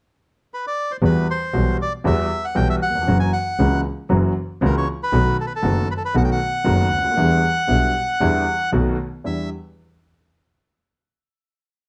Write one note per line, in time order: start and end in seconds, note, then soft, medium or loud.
0.54 0.66 B4 medium
0.67 0.92 D5 medium
0.91 0.97 C5 medium
1.02 1.24 E2 medium
1.02 1.24 E3 medium
1.02 1.24 G3 medium
1.02 1.24 B3 medium
1.02 1.24 F#4 medium
1.02 1.28 B4 medium
1.30 1.77 C5 medium
1.53 1.75 B1 medium
1.53 1.76 B1 medium
1.53 1.75 B2 medium
1.53 1.75 E3 medium
1.53 1.75 G3 medium
1.53 1.75 B3 medium
1.53 1.75 F#4 medium
1.82 1.93 D5 medium
2.04 2.27 E2 medium
2.04 2.26 E3 medium
2.04 2.26 G3 medium
2.04 2.26 B3 medium
2.04 2.27 F#4 medium
2.04 2.46 E5 medium
2.45 2.56 F#5 medium
2.55 2.77 B1 medium
2.55 2.78 B1 medium
2.55 2.77 B2 medium
2.55 2.77 E3 medium
2.55 2.77 G3 medium
2.55 2.77 B3 medium
2.55 2.78 F#4 medium
2.55 2.68 G5 medium
2.70 2.76 E5 medium
2.82 3.18 F#5 medium
2.89 2.95 D#2 soft
2.95 3.01 E2 medium
3.01 3.08 F2 medium
3.07 3.29 F#1 medium
3.07 3.29 F#2 medium
3.07 3.29 E3 medium
3.07 3.29 F#3 medium
3.07 3.29 A#3 medium
3.07 3.29 C#4 medium
3.07 3.29 F#4 medium
3.20 3.32 G#5 medium
3.33 3.81 F#5 medium
3.59 3.81 C#2 medium
3.59 3.81 C#3 medium
3.59 3.81 E3 medium
3.59 3.81 A#3 medium
3.59 3.81 C#4 medium
3.59 3.81 F#4 medium
4.09 4.32 F#1 medium
4.09 4.31 F#2 medium
4.09 4.31 E3 medium
4.09 4.31 F#3 medium
4.09 4.31 A#3 medium
4.09 4.31 C#4 medium
4.09 4.32 F#4 medium
4.61 4.83 C#2 medium
4.61 4.83 C#3 medium
4.61 4.83 E3 medium
4.61 4.83 A#3 medium
4.61 4.83 C#4 medium
4.61 4.83 F#4 medium
4.65 4.75 A#4 medium
4.77 4.88 C#5 medium
5.03 5.37 B4 medium
5.12 5.34 B1 medium
5.12 5.34 B2 medium
5.12 5.34 D#3 medium
5.12 5.34 A3 medium
5.12 5.34 B3 medium
5.12 5.34 F#4 medium
5.41 5.46 A4 medium
5.47 5.53 B4 medium
5.56 5.89 A4 medium
5.62 5.85 F#1 medium
5.62 5.84 F#2 medium
5.62 5.84 D#3 medium
5.62 5.84 A3 medium
5.62 5.85 B3 medium
5.62 5.85 F#4 medium
5.91 5.94 B4 medium
5.97 6.03 A4 medium
6.05 6.16 B4 medium
6.14 6.36 B1 medium
6.14 6.37 B1 medium
6.14 6.36 B2 medium
6.14 6.36 D#3 medium
6.14 6.36 A3 medium
6.14 6.36 B3 medium
6.14 6.37 F#4 medium
6.14 6.23 F#5 medium
6.24 6.30 G5 medium
6.32 8.70 F#5 loud
6.64 6.87 F#1 medium
6.64 6.88 F#1 medium
6.64 6.87 F#2 medium
6.64 6.87 D#3 medium
6.64 6.87 A3 medium
6.64 6.87 B3 medium
6.64 6.87 F#4 medium
6.92 7.17 D2 soft
6.98 7.04 C#2 soft
7.04 7.11 D2 medium
7.11 7.17 D#2 medium
7.16 7.39 E2 medium
7.16 7.39 D3 medium
7.16 7.39 E3 medium
7.16 7.39 G3 medium
7.16 7.39 B3 medium
7.16 7.39 E4 medium
7.67 7.90 B1 medium
7.67 7.91 B1 medium
7.67 7.90 B2 medium
7.67 7.90 D3 medium
7.67 7.90 G3 medium
7.67 7.90 B3 medium
7.67 7.90 E4 medium
8.20 8.43 E2 medium
8.20 8.42 D3 medium
8.20 8.43 E3 medium
8.20 8.43 G3 medium
8.20 8.43 B3 medium
8.20 8.43 E4 medium
8.72 8.94 B1 medium
8.72 8.95 B1 medium
8.72 8.95 B2 medium
8.72 8.95 D#3 medium
8.72 8.95 A3 medium
8.72 8.95 B3 medium
8.72 8.95 F#4 medium
9.24 9.46 E2 soft
9.24 9.47 E2 soft
9.24 9.46 G3 soft
9.24 9.46 D4 soft
9.24 9.47 E4 medium
9.24 9.50 E5 medium